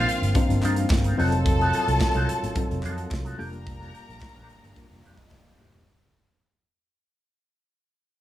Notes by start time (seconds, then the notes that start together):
Already playing: D#3 F3 A#3 C4 D4 D#4 F4 A#4 F5
0.09 muted clean electric guitar stroke, closed hi-hat
0.22 G1, muted clean electric guitar stroke, closed hi-hat
0.35 F3 C4 D4 D#4 A#4, muted clean electric guitar stroke, kick, closed hi-hat
0.49 G1, muted clean electric guitar stroke, closed hi-hat
0.62 G2 D#4 F4 A#4, clap, closed hi-hat
0.76 D#4 F4 A#4, closed hi-hat
0.90 G1, muted clean electric guitar stroke, kick, snare, clap
1.04 D#4 F4 A#4, closed hi-hat
1.17 F1 F#3 C4 D#4 F4 F#4 A4 A5, open hi-hat
1.32 closed hi-hat
1.46 muted clean electric guitar stroke, kick, closed hi-hat
1.60 D#4 F#4 A4, closed hi-hat
1.73 D#4 F#4 A4, closed hi-hat
1.87 C2, muted clean electric guitar stroke, closed hi-hat
2.00 muted clean electric guitar stroke, kick, snare, clap
2.14 C2 D#4 F#4 C5, closed hi-hat
2.29 closed hi-hat
2.42 A1, muted clean electric guitar stroke, closed hi-hat
2.55 F#3 C4 D#4 F4 A4, muted clean electric guitar stroke, kick, closed hi-hat
2.70 F1, muted clean electric guitar stroke, closed hi-hat
2.83 F2 D#4 F#4 A4, clap, closed hi-hat
2.97 D#4 F#4 A4, closed hi-hat
3.11 C2, kick, snare, clap
3.25 D#4 F#4 A4, closed hi-hat
3.38 F1 G3 A#3 D4 F4 G4 A4 A#4 A#5, open hi-hat
3.46 A#4
3.53 closed hi-hat
3.66 muted clean electric guitar stroke, kick, closed hi-hat
3.80 D4 G4 A#4, closed hi-hat
3.94 D4 G4 A#4, closed hi-hat
4.09 A#1, closed hi-hat
4.20 muted clean electric guitar stroke, kick, snare, clap
4.35 A#1 D4 G4 C5, closed hi-hat
4.50 closed hi-hat
4.63 G1, muted clean electric guitar stroke, closed hi-hat
4.76 G3 A#3 D4 F4 A#4, muted clean electric guitar stroke, kick, closed hi-hat
4.91 F1, muted clean electric guitar stroke, closed hi-hat
5.03 F2 D4 G4 A#4 F5, clap, closed hi-hat
5.17 D4 G4 A#4 D#5, kick, snare, closed hi-hat
5.31 F2 D5, muted clean electric guitar stroke, kick, snare, clap
5.45 D4 G4 A#4, high tom
5.58 D#1 G3 A#3 D4 F4 G4 A#4 C5, mid tom
5.72 E1, muted clean electric guitar stroke, floor tom